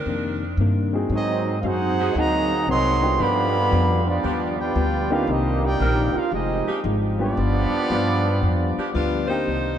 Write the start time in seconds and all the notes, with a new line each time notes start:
Already playing: D#3 C4 D4 A#4
0.06 F2 C3 D#3 A#3 D4
0.57 G2 C3 D#3 A#3
0.62 D4
0.93 A#3 C4 D#4 F#4 G#4
1.10 G#2 F#3 C4 D#4
1.14 C4 F#4 G#4 D#5
1.61 F#2 G#2 F#3 C4 D#4 F#4 F5
1.65 C4 D#4 G#4 C5 F#5
1.98 F#3 C4 D#4 G#4
2.15 D2 G#2 F#3 A#3 C4 D#4 G#4 D#5 F#5 A#5
2.67 C2 G#2 D#3 F#3 C4 D#4 G#4 D#5 F#5 C6
3.01 G3 B3 D4 F4 G4
3.19 G2 D3 F3 B3 D4 G4 D5 F5 B5
3.71 F2 G2 F3 B3 D4
4.06 F3 B3 D4 F4 G4 D5
4.24 D#2 G2 F3 B3 D4 G4
4.57 B3 D4 F4 G4 B4 D5 G5
4.75 D2 G2 F3 B3 D4
5.10 A#3 B3 C4 D4 D#4 F4 G4 B4 F5
5.27 C2 C3 D#3 G3 A#3 D4 D#4 G4 D#5
5.63 A#3 D#4 G4 A#4 D5 G5
5.80 A#1 C3 D#3 A#3 C4 D4 A#4
6.15 D4 F4 G4 A#4 F5, muted upright bass stroke
6.32 F1 F3 G#3 C4 D#4 G4 G#4 D#5
6.67 F3 G#3 D#4 G4, muted upright bass stroke
6.84 G#1 F3 G#3 D#4 G4
7.19 F3 G3 B3 D4 F4 G4 D5
7.37 G1 G2 F3 B3 D4
7.72 muted upright bass stroke
7.90 G2 F3 B3 D4 G4
8.42 F2 G2 F3 B3 D4
8.78 F3 B3 D4 G4, muted upright bass stroke
8.94 D2 G2 F3 B3 D4 F4 G4 D5
9.28 A#3 C4 D4 D#4 G4 C5
9.47 C2 C3 D#3 A#3 D4